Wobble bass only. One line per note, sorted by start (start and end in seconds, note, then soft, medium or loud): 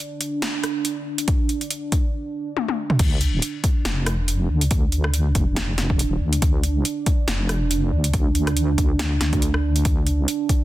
2.99 3.41 D2 loud
3.85 4.48 F1 loud
4.50 5.34 D2 loud
5.35 5.94 F1 loud
5.94 6.19 E1 loud
6.21 6.41 D2 loud
6.42 6.83 D2 loud
7.28 7.91 F1 loud
7.92 8.76 D2 loud
8.78 9.19 D2 loud
9.21 9.84 D2 loud
9.85 10.26 D2 loud